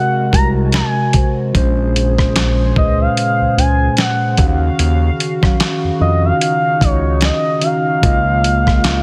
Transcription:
0.00 0.31 C3 loud
0.00 1.51 C3 medium
0.00 0.33 G#3 loud
0.00 1.51 G#3 medium
0.00 0.34 F#4 loud
0.00 1.51 F#4 medium
0.00 0.35 A#4 loud
0.00 0.33 F#5 loud
0.31 0.82 C2 medium
0.31 0.95 C3 medium
0.31 0.96 G#3 medium
0.31 0.96 F#4 medium
0.31 0.97 A#4 medium
0.31 0.48 A#5 loud
0.31 kick medium
0.31 closed hi-hat medium
0.72 1.34 G#5 medium
0.72 snare loud
0.72 closed hi-hat medium
1.13 1.45 C3 medium
1.13 1.46 G#3 medium
1.13 1.46 F#4 medium
1.13 kick medium
1.13 closed hi-hat medium
1.17 1.47 C5 medium
1.53 2.72 A#1 loud
1.53 1.99 A#2 loud
1.53 7.99 C#3 medium
1.53 2.00 G#3 loud
1.53 2.01 C#4 loud
1.53 4.36 G#4 medium
1.53 4.35 C5 medium
1.53 2.01 C5 loud
1.53 kick loud
1.53 closed hi-hat medium
1.96 closed hi-hat medium
2.18 2.62 A#2 medium
2.18 2.63 G#3 medium
2.18 2.64 C#4 medium
2.18 2.64 C5 medium
2.18 kick loud
2.18 cross-stick medium
2.36 snare loud
2.36 closed hi-hat medium
2.75 3.07 C#2 medium
2.75 3.38 A#2 medium
2.75 3.39 G#3 medium
2.75 3.40 C#4 medium
2.75 2.99 D#5 medium
2.75 kick medium
2.79 2.85 B4 medium
2.85 3.44 C5 medium
3.01 3.16 F5 medium
3.17 3.55 F5 loud
3.17 closed hi-hat medium
3.41 3.47 C#2 soft
3.56 3.89 C#2 medium
3.56 4.37 A#2 medium
3.56 4.38 G#3 medium
3.56 4.37 C#4 medium
3.56 4.39 C5 medium
3.56 3.95 G#5 loud
3.56 closed hi-hat medium
3.97 4.58 F#5 loud
3.97 snare loud
3.97 closed hi-hat medium
4.37 4.70 D#2 loud
4.37 5.19 D#3 medium
4.37 5.19 C#4 medium
4.37 7.99 F#4 medium
4.37 5.20 F#4 medium
4.37 5.99 F5 medium
4.37 kick loud
4.37 closed hi-hat medium
4.41 5.21 F5 medium
4.79 5.10 D#2 loud
4.79 closed hi-hat medium
5.20 closed hi-hat medium
5.42 5.56 F#2 medium
5.42 5.86 D#3 medium
5.42 5.87 C#4 medium
5.42 5.88 F#4 medium
5.42 kick loud
5.42 cross-stick medium
5.46 5.89 F5 medium
5.60 snare loud
5.60 closed hi-hat medium
5.84 5.91 F2 medium
5.99 6.32 F2 medium
5.99 6.63 D#3 medium
5.99 6.63 C#4 medium
5.99 8.01 D#4 medium
5.99 6.09 F4 medium
5.99 6.23 D#5 loud
6.03 6.65 F5 medium
6.08 6.67 F#4 medium
6.25 6.40 F5 loud
6.41 6.85 F5 loud
6.41 closed hi-hat medium
6.80 7.31 C#2 medium
6.80 7.44 D#3 medium
6.80 7.44 C#4 medium
6.80 7.45 F#4 medium
6.80 7.25 C#5 medium
6.80 kick medium
6.80 closed hi-hat medium
6.84 7.46 D#5 medium
7.21 7.63 D#5 loud
7.21 snare loud
7.21 closed hi-hat medium
7.61 7.94 D#3 medium
7.61 7.94 C#4 medium
7.61 7.95 F#4 medium
7.61 9.03 F5 loud
7.61 closed hi-hat medium
7.66 7.96 F5 medium
8.01 9.03 C#2 loud
8.01 8.48 C#3 loud
8.01 9.03 D#3 medium
8.01 9.03 A#3 medium
8.01 8.48 A#3 medium
8.01 9.03 F4 medium
8.01 8.49 F4 medium
8.01 8.50 D#5 loud
8.01 kick loud
8.01 closed hi-hat medium
8.44 closed hi-hat medium
8.66 9.03 C#3 medium
8.66 9.03 A#3 medium
8.66 9.03 F4 medium
8.66 9.03 F5 medium
8.66 kick loud
8.66 cross-stick medium
8.84 snare loud
8.84 closed hi-hat medium

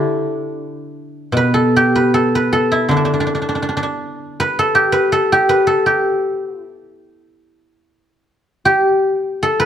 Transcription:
0.00 2.12 D3 soft
0.00 2.64 D4 medium
0.00 2.26 E4 medium
0.00 1.76 G4 medium
0.00 1.46 A4 medium
0.00 1.13 B4 medium
1.32 2.90 B2 soft
1.37 1.95 B4 medium
1.54 2.14 A4 medium
1.76 4.12 G4 medium
1.96 2.35 B4 medium
2.14 2.52 A4 medium
2.35 4.39 B4 medium
2.53 4.58 A4 medium
2.72 5.32 E4 medium
2.89 5.11 D3 medium
2.89 2.96 D4 medium
2.97 3.04 D4 soft
3.05 3.13 D4 medium
3.14 3.20 D4 soft
3.20 3.26 D4 medium
3.27 3.34 D4 soft
3.35 3.41 D4 soft
3.42 3.48 D4 soft
3.49 3.55 D4 soft
3.55 3.62 D4 soft
3.62 3.68 D4 soft
3.69 3.76 D4 soft
3.77 3.82 D4 medium
3.83 6.63 D4 soft
4.40 4.92 B4 medium
4.59 5.12 A4 medium
4.75 5.32 G4 medium
4.92 5.49 B4 medium
5.12 5.67 A4 medium
5.32 5.86 G4 medium
5.49 7.53 B4 medium
5.67 7.86 A4 medium
5.86 6.64 G4 medium
6.64 8.21 E4 medium
8.65 9.65 G4 medium
9.43 9.65 A4 medium
9.60 9.65 B4 medium

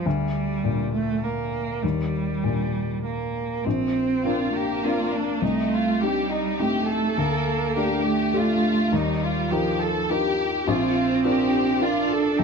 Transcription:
0.06 1.79 D2 soft
0.06 0.92 G3 medium
0.64 1.83 A#2 soft
0.93 1.25 A3 medium
1.23 1.84 A#3 medium
1.82 3.61 D#2 soft
1.82 3.04 G3 medium
2.44 3.65 A#2 soft
3.05 3.66 A#3 soft
3.64 4.23 A#1 soft
3.64 4.52 C4 medium
4.24 4.79 C4 soft
4.24 4.79 D4 soft
4.24 4.52 F4 soft
4.24 4.80 A#4 soft
4.53 5.44 A#3 medium
4.53 4.83 G4 soft
4.84 5.38 C4 soft
4.84 5.38 D4 soft
4.84 5.13 F4 soft
4.84 5.39 A#4 soft
5.13 5.42 D4 soft
5.42 5.99 C2 soft
5.42 6.02 A3 medium
5.42 5.71 D#4 soft
5.71 6.01 F4 soft
6.00 6.61 G3 medium
6.00 6.56 C4 soft
6.00 6.57 D#4 soft
6.00 6.30 G4 soft
6.00 6.57 G4 soft
6.30 6.59 D#4 soft
6.58 7.18 A3 medium
6.58 7.13 C4 soft
6.58 7.14 D#4 soft
6.58 6.88 G4 soft
6.58 7.14 G4 soft
6.87 7.75 A4 soft
7.17 7.74 D2 soft
7.17 8.04 A#3 medium
7.76 8.30 A3 soft
7.76 8.30 D4 soft
7.76 8.30 G4 soft
7.76 8.33 G4 soft
8.05 8.95 A3 medium
8.33 8.88 A3 soft
8.33 8.88 D4 soft
8.33 8.93 F4 medium
8.33 8.88 G4 soft
8.92 9.49 D#2 soft
8.92 9.52 G3 medium
8.92 9.22 D#4 soft
9.23 9.51 F4 soft
9.50 10.08 F3 medium
9.50 10.05 D#4 soft
9.50 10.05 F4 soft
9.50 9.79 G4 soft
9.50 10.05 A#4 soft
9.81 10.09 A4 medium
10.09 10.63 D#4 soft
10.09 10.63 F4 soft
10.09 10.66 G4 medium
10.09 10.63 A#4 soft
10.66 11.23 A#1 medium
10.66 11.83 C4 medium
10.66 11.24 F4 medium
11.24 11.77 D4 soft
11.24 11.78 F4 soft
11.24 11.80 G4 medium
11.24 11.78 A#4 soft
11.81 12.34 D4 soft
11.81 12.40 D4 medium
11.81 12.10 F4 medium
11.81 12.35 F4 soft
11.81 12.35 A#4 soft
12.11 12.39 A4 medium
12.39 12.44 C2 medium
12.39 12.44 D#4 medium
12.39 12.44 G4 soft

